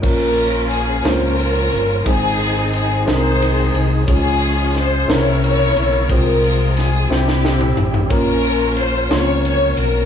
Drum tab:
CC |x-----------|------------|------------|------------|
RD |--b-b-b-b-b-|b-b-b-b-b-b-|b-b-b-b-b-b-|b-b-b-------|
SD |------o-----|------o-----|----o-o-----|----o-ooo---|
T2 |------------|------------|------------|---------o--|
FT |------------|------------|------------|----------oo|
BD |o-----------|o-----------|o-----------|o-----------|

CC |------------|
RD |b-b-b-b-b-b-|
SD |------o-----|
T2 |------------|
FT |------------|
BD |o-----------|